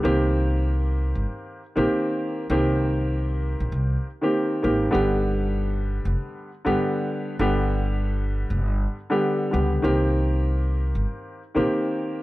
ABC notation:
X:1
M:4/4
L:1/16
Q:"Swing 16ths" 1/4=98
K:Cm
V:1 name="Grand piano"
[E,B,CG]8- [E,B,CG]2 z [E,B,CG]4- [E,B,CG] | [E,B,CG]8- [E,B,CG]2 z [E,B,CG]3 [E,B,CG]2 | [D,G,=B,G]8- [D,G,B,G]2 z [D,G,B,G]4- [D,G,B,G] | [D,G,=B,G]8- [D,G,B,G]2 z [D,G,B,G]3 [D,G,B,G]2 |
[E,B,CG]8- [E,B,CG]2 z [E,B,CG]4- [E,B,CG] |]
V:2 name="Upright bass" clef=bass
C,,6- C,, G,,, z3 B,,, z4 | C,,6- C,, B,,, C,,2 z4 A,,,2 | G,,,6- G,,, F,,, z3 G,,, z4 | G,,,6- G,,, F,,, G,,,2 z4 _D,,2 |
C,,6- C,, G,,, z3 B,,, z4 |]